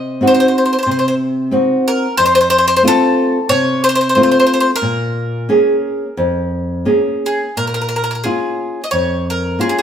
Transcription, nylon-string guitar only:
0.00 0.21 C3 medium
0.21 0.74 C4 soft
0.21 0.75 D#4 soft
0.21 0.75 F#4 medium
0.86 1.51 C3 medium
1.51 2.05 C4 soft
1.51 2.05 D#4 soft
1.51 2.06 F#4 medium
2.18 2.82 F2 medium
2.83 3.37 A3 soft
2.83 3.37 C4 soft
2.83 3.38 F4 medium
3.49 4.14 C3 medium
4.16 4.69 A3 soft
4.16 4.69 C4 soft
4.16 4.70 F4 medium
4.82 5.47 A#2 medium
5.49 6.03 A#3 soft
5.49 6.03 C#4 soft
5.49 6.03 G#4 medium
6.17 6.84 F2 medium
6.85 7.41 A#3 soft
6.85 7.41 C#4 soft
6.85 7.41 G#4 soft
7.57 8.22 A#2 soft
8.25 8.79 A#3 soft
8.25 8.79 C#4 soft
8.25 8.79 F4 soft
8.92 9.57 F2 medium
9.59 9.82 A#3 soft
9.59 9.82 C#4 soft
9.59 9.82 F4 soft

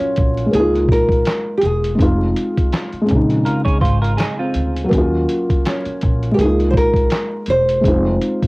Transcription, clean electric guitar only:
3.45 3.65 F4 medium
3.45 3.64 A#4 medium
3.65 3.81 G#4 medium
3.65 3.80 C#5 medium
3.81 4.01 F4 medium
3.81 4.01 C5 medium
4.02 4.17 F4 medium
4.02 4.17 A#4 medium
4.17 4.37 D#4 medium
4.17 4.37 G#4 medium
4.39 4.89 C4 medium
4.39 4.89 F4 medium

